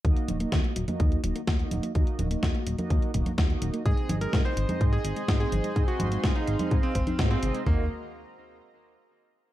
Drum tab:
HH |xxxxxxxxxxxxxxxx|xxxxxxxxxxxxxxxx|xxxxxxxxxxxxxxxx|xxxxxxxxxxxxxxxx|
SD |----o-------o---|----o-------o---|----o-------o---|----o-------o---|
FT |----------------|----------------|----------------|----------------|
CG |--o----o------o-|--o----o---o----|--o----o------o-|--o----o---o----|
BD |o---o---o---o---|o---o---o-o-o---|o---o---o---o---|o---o---o-o-o---|

HH |----------------|
SD |----------------|
FT |o---------------|
CG |----------------|
BD |o---------------|